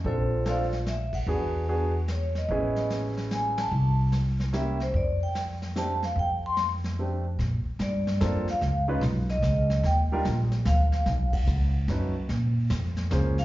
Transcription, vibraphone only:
X:1
M:3/4
L:1/8
Q:"Swing" 1/4=147
K:Bblyd
V:1 name="Vibraphone"
[CFAc]2 [Fcdf] z e _g- | _g2 z2 _d _e- | _e2 z2 ^g a- | a2 z2 e c |
d g z2 a f | g c' z4 | z2 d3 f- | f z2 _e3 |
g2 z2 f2- | f ^f2 z3 | z4 z f |]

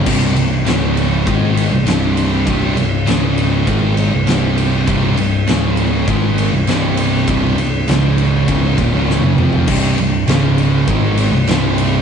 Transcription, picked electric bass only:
X:1
M:4/4
L:1/16
Q:1/4=100
K:Cm
V:1 name="Picked electric bass" clef=bass
C,,,2 C,,,2 _D,,,4 A,,,3 C,,, C,,,4 | C,,,2 C,,,2 _D,,,4 A,,,3 C,,, C,,,4 | C,,,2 C,,,2 _D,,,4 A,,,3 C,,, C,,,4 | C,,,2 C,,,2 _D,,,4 D,,,2 E,,, D,,,2 ^F,,, =F,,,2 |
C,,,2 C,,,2 _D,,,4 A,,,3 C,,, C,,,4 |]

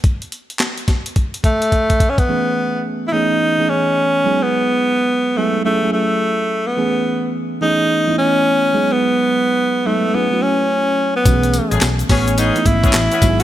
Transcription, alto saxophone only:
X:1
M:4/4
L:1/16
Q:"Swing 16ths" 1/4=107
K:Alyd
V:1 name="Alto saxophone"
z8 z2 A,4- A,/2 C/2 B,- | B,4 z3/2 E/2 D4 C4- C B,- | B,6 A,2 A,2 A,4- A, B,- | B,4 z2 D4 C4- C B,- |
B,6 A,2 B,2 C4- C B,- | B,4 z2 C2 D2 E4- E z |]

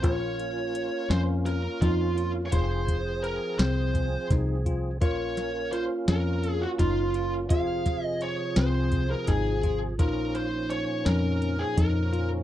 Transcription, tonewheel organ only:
X:1
M:7/8
L:1/8
Q:1/4=84
K:Bbm
V:1 name="Tonewheel organ"
[B,DF]6- [B,DF] | [F,CA]6- [F,CA] | [B,DF]6- [B,DF] | [C,F,A]6- [C,F,A] |
[B,,F,D]6- [B,,F,D] |]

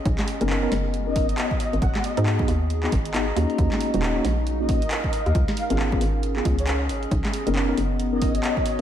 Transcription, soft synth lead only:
X:1
M:4/4
L:1/16
Q:"Swing 16ths" 1/4=136
K:Blyd
V:1 name="Soft synth lead"
z8 z d4- d d2 | f2 d3 z8 z3 | z8 z d4- d d2 | z2 e e z6 z c c z3 |
z8 z d4- d d2 |]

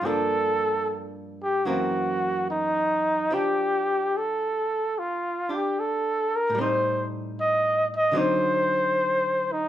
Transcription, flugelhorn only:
X:1
M:4/4
L:1/8
Q:"Swing" 1/4=74
K:F
V:1 name="Flugelhorn"
A2 z G _G2 _E2 | G2 A2 F G A B | c z _e e c3 _E |]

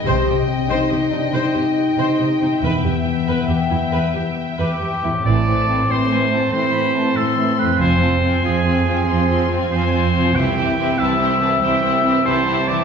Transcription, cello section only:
X:1
M:12/8
L:1/8
Q:3/8=94
K:Em
V:1 name="Cello section" clef=bass
C, C, z C, C, C, C, C, z C, C, C, | E,, E,, z E,, E,, E,, E,, E,, z E,, E,, E,, | [K:Am] A,,3 A,,3 A,,3 A,,3 | F,,3 F,,3 F,,3 F,,3 |
C,,3 C,,3 C,,3 C,,3 |]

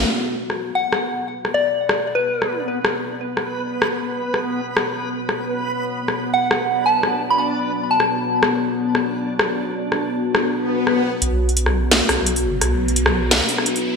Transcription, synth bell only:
X:1
M:4/4
L:1/16
Q:"Swing 16ths" 1/4=172
K:Bm
V:1 name="Synth bell"
z8 f4 z4 | z d2 z4 z B4 z4 | z16 | z16 |
z8 f4 z2 a2 | z3 b b z4 z a6 | z16 | z16 |
z16 | z16 |]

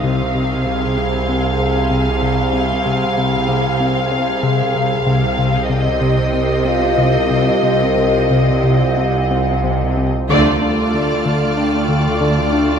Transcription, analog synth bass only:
X:1
M:4/4
L:1/8
Q:1/4=94
K:Cm
V:1 name="Analog synth bass" clef=bass
C, C, C, C, C C C, C, | C, C, C, C, C C C, C, | C, C, C, C, C C C, C, | C, C, C, C, C C C, C, |
[K:Dphr] D, D D, D, D D, D, D |]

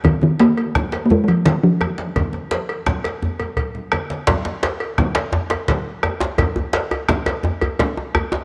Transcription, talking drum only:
X:1
M:12/8
L:1/16
Q:3/8=114
K:Bbdor
V:1 name="Talking drum" clef=bass
E,2 E,2 B,6- B,3/2 B,/2 A,3/2 A,/2 F,2 E,2 F,4- F,/2 z3/2 | z24 | z24 | z24 |]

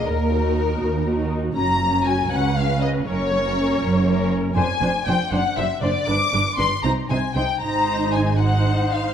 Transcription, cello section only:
X:1
M:6/8
L:1/8
Q:3/8=79
K:Gb
V:1 name="Cello section" clef=bass
E,,3 E,,3 | G,,3 D,,3 | G,,3 G,,3 | [K:Ablyd] F,, F,, F,, ^F,, F,, F,, |
G,, G,, G,, C, C, C, | A,,6 |]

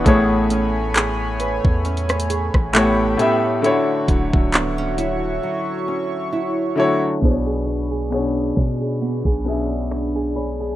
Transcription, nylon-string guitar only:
X:1
M:4/4
L:1/16
Q:"Swing 16ths" 1/4=67
K:Bdor
V:1 name="Nylon-string guitar"
A,2 C2 G2 B2 C2 G2 A,2 C2 | D,2 F,2 B, C E2 F,2 C2 E2 F,2 | B, G c G c G c G B, G c G c G c G |]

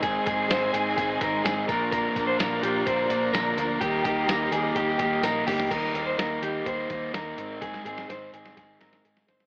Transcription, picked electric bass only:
X:1
M:4/4
L:1/8
Q:1/4=126
K:Eb
V:1 name="Picked electric bass" clef=bass
A,,, A,,, A,,, A,,, A,,, A,,, A,,, B,,,- | B,,, B,,, B,,, B,,, B,,, B,,, B,,, D,, | E,, E,, E,, E,, E,, E,, B,,, D,, | E,, E,, E,, E,, E,, E,, E,, A,,,- |
A,,, A,,, A,,, A,,, A,,, A,,, A,,, G,,, |]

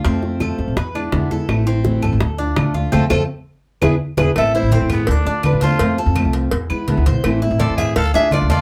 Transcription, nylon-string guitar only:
X:1
M:4/4
L:1/8
Q:1/4=167
K:Ephr
V:1 name="Nylon-string guitar"
z8 | z8 | z8 | [K:Am] e c A ^G A2 B c- |
c z6 z | z2 d e f e d d |]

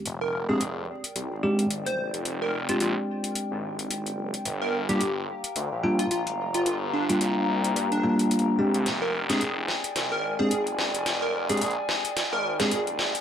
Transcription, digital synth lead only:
X:1
M:4/4
L:1/16
Q:"Swing 16ths" 1/4=109
K:Fdor
V:1 name="Digital synth lead"
z B2 A2 z8 c2 z | z B2 F F z8 z3 | z B2 G2 z6 F F z2 F | F z D2 z4 z D6 z |
z B2 A2 z4 B2 A2 z3 | z B2 A2 z4 B2 A2 z3 |]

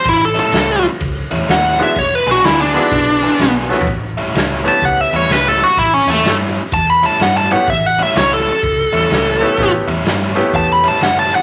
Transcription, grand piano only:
X:1
M:4/4
L:1/8
Q:"Swing" 1/4=126
K:Amix
V:1 name="Grand piano"
z6 z [^G,B,DEF] | z3 [^G,B,DEF]3 z [A,B,CEF] | z3 [A,B,CEG]3 z2 | z6 z [A,B,CEG] |
z6 z [A,B,CEG] | [A,B,CEG] z2 [A,B,CEG]3 z2 |]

